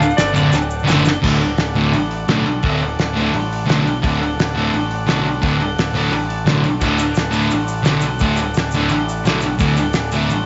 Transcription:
Already playing: picked electric bass D1, transistor combo organ A4 D5 F#5, electric slide guitar F5
0.02 shaker
0.10 shaker
0.17 picked electric bass G1, electric slide guitar D5, snare, crash, shaker
0.33 picked electric bass F#1, distorted electric guitar D2 A2 D3, electric slide guitar D5, shaker
0.52 picked electric bass D1, snare, shaker
0.61 shaker
0.70 shaker
0.79 shaker
0.84 picked electric bass F#1, distorted electric guitar D2 A2 D3, shaker
0.90 snare
0.98 shaker
1.05 snare, shaker
1.13 shaker
1.22 picked electric bass D1, distorted electric guitar D2 A2 D3, transistor combo organ A4 D5 F#5, kick, crash
1.41 open hi-hat
1.58 picked electric bass D1, snare, open hi-hat
1.75 distorted electric guitar D2 A2 D3, open hi-hat
1.92 picked electric bass A1, open hi-hat
2.11 open hi-hat
2.27 picked electric bass B1, distorted electric guitar D2 A2 D3, snare, open hi-hat
2.46 open hi-hat
2.63 picked electric bass D1, distorted electric guitar D2 A2 D3, kick, open hi-hat
2.81 open hi-hat
2.97 picked electric bass D1, snare, open hi-hat
3.14 distorted electric guitar D2 A2 D3, open hi-hat
3.33 picked electric bass A1, open hi-hat
3.53 open hi-hat
3.66 picked electric bass B1, distorted electric guitar D2 A2 D3, snare, open hi-hat
3.87 open hi-hat
4.02 picked electric bass D1, distorted electric guitar D2 A2 D3, transistor combo organ A4 D5, kick, open hi-hat
4.06 transistor combo organ F#5
4.23 open hi-hat
4.37 picked electric bass D1, snare, open hi-hat
4.55 distorted electric guitar D2 A2 D3, open hi-hat
4.74 picked electric bass A1, open hi-hat
4.91 open hi-hat
5.06 picked electric bass B1, distorted electric guitar D2 A2 D3, snare, open hi-hat
5.26 open hi-hat
5.41 picked electric bass D1, distorted electric guitar D2 A2 D3, kick, open hi-hat
5.60 open hi-hat
5.76 picked electric bass D1, snare, open hi-hat
5.94 distorted electric guitar D2 A2 D3, open hi-hat
6.12 picked electric bass A1, open hi-hat
6.29 transistor combo organ A5, open hi-hat
6.46 picked electric bass B1, distorted electric guitar D2 A2 D3, transistor combo organ F#5, snare, open hi-hat
6.62 transistor combo organ D5, open hi-hat
6.76 transistor combo organ A4 D5 F#5
6.81 picked electric bass D1, distorted electric guitar D2 A2 D3, kick, crash, shaker
6.99 open hi-hat, shaker
7.15 picked electric bass D1, snare, open hi-hat, shaker
7.31 distorted electric guitar D2 A2 D3, open hi-hat, shaker
7.41 shaker
7.50 picked electric bass A1, open hi-hat, shaker
7.68 open hi-hat, shaker
7.77 shaker
7.83 picked electric bass B1, distorted electric guitar D2 A2 D3, snare, open hi-hat, shaker
8.01 open hi-hat, shaker
8.19 picked electric bass D1, distorted electric guitar D2 A2 D3, kick, open hi-hat, shaker
8.36 open hi-hat, shaker
8.54 picked electric bass D1, snare, open hi-hat, shaker
8.71 distorted electric guitar D2 A2, open hi-hat, shaker
8.76 distorted electric guitar D3
8.81 shaker
8.89 picked electric bass A1, open hi-hat, shaker
9.09 open hi-hat, shaker
9.25 picked electric bass B1, distorted electric guitar D2 A2 D3, snare, open hi-hat, shaker
9.41 open hi-hat, shaker
9.57 picked electric bass D1, distorted electric guitar D2 A2 D3, transistor combo organ A4 D5 F#5, kick, shaker
9.61 open hi-hat
9.77 open hi-hat, shaker
9.93 picked electric bass D1, snare, open hi-hat, shaker
10.12 distorted electric guitar D2 A2 D3, open hi-hat, shaker
10.22 shaker
10.28 picked electric bass A1, open hi-hat, shaker

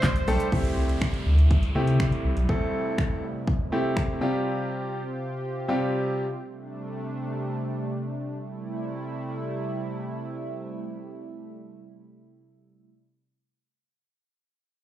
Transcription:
Already playing: analog synth pad C3 G3 A3 D4, supersaw synth C5
0.03 sub bass C2, kick, snare, clap, closed hi-hat, shaker
0.16 closed hi-hat, shaker
0.28 sub bass B1, grand piano G3 A3 D4 G4 A4, open hi-hat, shaker
0.40 closed hi-hat, shaker
0.52 sub bass C2, analog synth pad C3 G3 A3 E4, grand piano A3 C4 E4, kick, closed hi-hat, downlifter
0.65 closed hi-hat
0.77 sub bass C2
0.89 closed hi-hat
1.01 finger snap, kick, closed hi-hat
1.14 closed hi-hat
1.26 sub bass D2
1.38 closed hi-hat
1.51 kick, closed hi-hat
1.63 sub bass C2, closed hi-hat
1.75 sub bass C3, grand piano A3 C4 E4 G4
1.87 closed hi-hat
2.00 sub bass C3, finger snap, kick, closed hi-hat
2.12 closed hi-hat
2.24 sub bass C2
2.37 sub bass B1, closed hi-hat
2.49 grand piano A3 C4 E4 A4, kick
2.98 finger snap, kick
3.48 kick
3.72 grand piano A3 C4 E4 G4
3.97 finger snap, kick
4.21 grand piano C3 G3 C4 F4 G4, analog synth pad C4 F4 G4
5.68 grand piano C3 G3 C4 F4 G4
6.42 analog synth pad C3 G3 A3 D4
8.39 analog synth pad C3 G3 A3 E4

